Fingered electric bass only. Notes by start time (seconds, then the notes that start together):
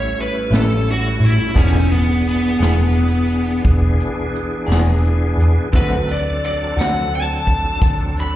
0.50 A1
1.20 A2
1.56 E1
2.60 E1
3.65 E1
4.68 E1
5.37 E2
5.73 D2
6.77 D2
7.82 D2